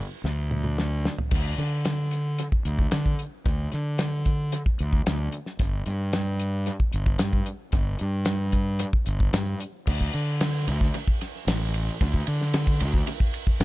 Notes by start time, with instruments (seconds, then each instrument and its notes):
0.24 fingered electric bass D2, snare
0.51 mid tom
0.64 mid tom
0.78 snare
1.05 snare
1.19 floor tom
1.31 fingered electric bass D2, kick, crash
1.58 fingered electric bass D3, closed hi-hat
1.85 snare, closed hi-hat
2.11 closed hi-hat
2.39 closed hi-hat
2.52 kick
2.65 fingered electric bass D2, closed hi-hat
2.79 kick
2.91 fingered electric bass D3, snare, closed hi-hat
3.06 kick
3.19 closed hi-hat
3.46 fingered electric bass D2, kick, closed hi-hat
3.72 fingered electric bass D3, snare, closed hi-hat
3.98 snare, closed hi-hat
4.25 kick, closed hi-hat
4.52 closed hi-hat
4.66 kick
4.79 fingered electric bass D2, closed hi-hat
4.93 kick
5.06 fingered electric bass D2, snare, closed hi-hat
5.32 closed hi-hat
5.46 snare
5.59 fingered electric bass G1, kick, closed hi-hat
5.86 fingered electric bass G2, closed hi-hat
6.13 snare, closed hi-hat
6.40 closed hi-hat
6.66 closed hi-hat
6.80 kick
6.93 fingered electric bass G1, closed hi-hat
7.06 kick
7.19 fingered electric bass G2, snare, closed hi-hat
7.33 kick
7.46 closed hi-hat
7.72 fingered electric bass G1, kick, closed hi-hat
7.99 fingered electric bass G2, closed hi-hat
8.25 snare, closed hi-hat
8.52 kick, closed hi-hat
8.79 closed hi-hat
8.93 kick
9.06 fingered electric bass G1, closed hi-hat
9.20 kick
9.33 fingered electric bass G2, snare, closed hi-hat
9.60 closed hi-hat
9.87 fingered electric bass D2, kick, crash
10.01 kick
10.13 fingered electric bass D3, ride
10.41 snare, ride
10.68 fingered electric bass D2, ride
10.81 kick, snare
10.94 ride
11.08 kick
11.21 snare, ride
11.47 fingered electric bass A1, snare, ride
11.74 ride
12.01 fingered electric bass D2, kick, ride
12.14 kick
12.27 fingered electric bass D3, ride
12.41 snare
12.54 snare, ride
12.67 kick
12.80 fingered electric bass D2, ride
12.94 kick
13.07 ride
13.20 kick
13.34 ride
13.47 kick
13.60 fingered electric bass G#1, snare, ride